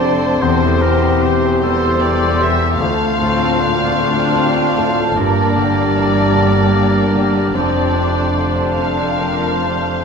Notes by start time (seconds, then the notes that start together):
Already playing: F1 F2 D3 F3 C4 D4 F4 C5 A5
0.00 C3 A4 D5
0.41 E1 E2 E3 C4 G4 A4 C5 G5
0.81 E3 G4 A#4
1.22 E3 G4 C5
1.62 E3 G3 A#3 A4 C5 C6
2.01 C4 D5
2.41 E3 G4 E5
2.80 D2 D3 A3 C4 F4 A4 C5 F5 A5
3.20 A2 C4 F4
3.60 A#2 D4
3.99 A3 A#3 A4
4.39 C4 G4
4.78 A2 F4 A4
5.17 G1 G2 A#3 D4 G4 A#4 D5
5.56 D3 D4 G4
5.95 E3 G4 A5
6.34 D3 G3 A#4
6.74 A#3
7.14 D3 A#3 D4
7.54 F1 F2 C4 D4 C5 D5 A5
7.95 C3 D4
8.36 D3 D4 C5
8.76 C3 A#3 A4 F5
9.18 C4 F4 A#4
9.62 C3 D4 C5